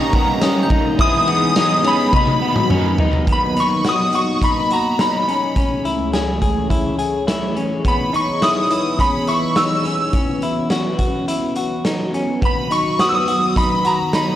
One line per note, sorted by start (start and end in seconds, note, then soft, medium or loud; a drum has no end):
0.00 0.98 D#3 medium
0.00 0.97 G3 medium
0.00 0.99 A#3 medium
0.00 0.98 C#4 medium
0.00 1.00 C#4 medium
0.00 0.13 D#4 medium
0.00 3.25 D#4 medium
0.00 1.01 G4 medium
0.00 0.98 A#4 medium
0.00 2.09 D#5 medium
0.00 0.67 A#5 medium
0.13 0.42 B3 medium
0.13 kick loud
0.13 ride soft
0.41 0.71 C#4 medium
0.41 1.24 D#6 medium
0.41 snare loud
0.41 ride medium
0.41 tambourine medium
0.63 1.41 G6 medium
0.70 0.99 D#4 medium
0.70 kick loud
0.70 ride soft
0.97 2.11 E3 medium
0.97 1.56 E3 medium
0.97 1.54 G#3 medium
0.97 3.24 B3 medium
0.97 1.57 B3 medium
0.97 1.58 D#4 medium
0.97 1.28 E4 medium
0.97 2.12 G#4 medium
0.97 1.88 D#6 loud
0.97 kick loud
0.97 ride medium
1.02 1.58 G#4 medium
1.28 1.56 B3 medium
1.28 ride soft
1.55 2.13 G#3 medium
1.55 2.14 B3 medium
1.55 1.84 D#4 medium
1.55 2.15 D#4 medium
1.55 snare loud
1.55 ride medium
1.55 tambourine medium
1.60 2.15 G#4 medium
1.84 2.13 C#4 medium
1.84 2.15 B5 medium
1.84 ride medium
2.11 2.70 B2 medium
2.11 3.79 D#3 medium
2.11 3.26 F#3 medium
2.11 2.69 F#3 medium
2.11 2.71 B3 medium
2.11 2.42 D#4 medium
2.11 2.72 D#4 medium
2.11 3.26 F#4 medium
2.11 3.26 D#5 medium
2.11 kick loud
2.11 high tom medium
2.16 2.68 B5 medium
2.27 high tom medium
2.42 2.70 B3 medium
2.56 mid tom medium
2.69 3.79 F#3 medium
2.69 3.79 B3 medium
2.69 2.99 C#4 medium
2.69 3.79 D#4 medium
2.69 mid tom loud
2.74 3.79 A#4 medium
2.98 3.28 D#4 medium
2.98 floor tom loud
3.13 floor tom medium
3.27 5.54 F#3 medium
3.27 5.54 A#3 medium
3.27 5.54 B3 medium
3.27 3.56 B3 medium
3.27 5.54 D#4 medium
3.27 5.54 D#5 medium
3.27 kick loud
3.27 closed hi-hat medium
3.32 3.59 B5 medium
3.57 3.85 D#4 medium
3.57 3.88 C#6 medium
3.57 closed hi-hat soft
3.84 4.13 F#4 medium
3.84 snare medium
3.84 closed hi-hat medium
3.89 4.16 D#6 medium
4.13 4.42 F#4 medium
4.13 4.44 C#6 medium
4.13 closed hi-hat soft
4.42 4.71 D#4 medium
4.42 4.72 B5 medium
4.42 kick medium
4.42 closed hi-hat medium
4.71 5.00 F#4 medium
4.71 5.01 A#5 medium
4.71 closed hi-hat soft
4.99 5.28 D#4 medium
4.99 5.40 B5 medium
4.99 snare loud
4.99 closed hi-hat medium
5.28 5.56 C#4 medium
5.28 closed hi-hat soft
5.54 7.82 C#2 medium
5.54 12.37 E3 medium
5.54 7.82 A3 medium
5.54 7.82 C#4 medium
5.54 5.85 C#4 medium
5.54 10.09 G#4 medium
5.54 10.09 C#5 medium
5.54 kick medium
5.54 closed hi-hat medium
5.85 6.13 E4 medium
5.85 closed hi-hat soft
6.13 6.40 G#4 medium
6.13 snare medium
6.13 closed hi-hat medium
6.42 6.70 G#4 medium
6.42 kick medium
6.42 closed hi-hat medium
6.70 6.98 E4 medium
6.70 kick medium
6.70 closed hi-hat medium
6.99 7.27 G#4 medium
6.99 closed hi-hat soft
7.27 7.56 E4 medium
7.27 snare loud
7.27 closed hi-hat medium
7.56 7.85 C#4 medium
7.56 closed hi-hat soft
7.84 10.11 B3 medium
7.84 8.13 B3 medium
7.84 10.11 D#4 medium
7.84 8.13 B5 medium
7.84 kick medium
7.84 closed hi-hat medium
8.13 8.42 D#4 medium
8.13 8.44 C#6 medium
8.13 closed hi-hat soft
8.42 8.70 E4 medium
8.42 9.01 D#6 medium
8.42 snare loud
8.42 closed hi-hat medium
8.70 8.99 E4 medium
8.70 closed hi-hat medium
8.99 9.28 C#4 medium
8.99 9.29 B5 medium
8.99 kick medium
8.99 closed hi-hat medium
9.27 9.56 E4 medium
9.27 9.57 C#6 medium
9.27 closed hi-hat soft
9.56 9.85 D#4 medium
9.56 9.96 E6 medium
9.56 snare loud
9.56 closed hi-hat medium
9.85 10.13 C#4 medium
9.85 closed hi-hat soft
10.13 14.36 B3 medium
10.13 12.39 C#4 medium
10.13 10.43 C#4 medium
10.13 14.36 F#4 medium
10.13 12.40 B4 medium
10.13 kick loud
10.13 closed hi-hat medium
10.42 10.70 E4 medium
10.42 closed hi-hat soft
10.70 10.98 F#4 medium
10.70 snare loud
10.70 closed hi-hat medium
10.99 11.28 F#4 medium
10.99 kick medium
10.99 closed hi-hat medium
11.28 11.56 E4 medium
11.28 closed hi-hat medium
11.55 11.85 F#4 medium
11.55 closed hi-hat soft
11.85 12.14 D#4 medium
11.85 snare loud
11.85 closed hi-hat medium
12.14 12.42 C#4 medium
12.14 closed hi-hat soft
12.41 14.36 D#3 medium
12.41 14.36 F#3 medium
12.41 12.70 B3 medium
12.41 14.36 B4 medium
12.41 kick loud
12.41 closed hi-hat soft
12.45 12.70 B5 medium
12.71 12.99 D#4 medium
12.71 12.98 C#6 medium
12.71 closed hi-hat soft
12.99 13.27 F#4 medium
12.99 13.07 D#6 medium
12.99 snare loud
12.99 closed hi-hat medium
13.09 13.15 E6 medium
13.15 13.58 D#6 medium
13.28 13.56 F#4 medium
13.28 closed hi-hat medium
13.56 13.85 D#4 medium
13.56 13.86 B5 medium
13.56 kick medium
13.56 closed hi-hat medium
13.85 14.13 F#4 medium
13.85 14.15 A#5 medium
13.85 closed hi-hat soft
14.13 14.36 D#4 medium
14.13 14.36 B5 medium
14.13 snare loud
14.13 closed hi-hat medium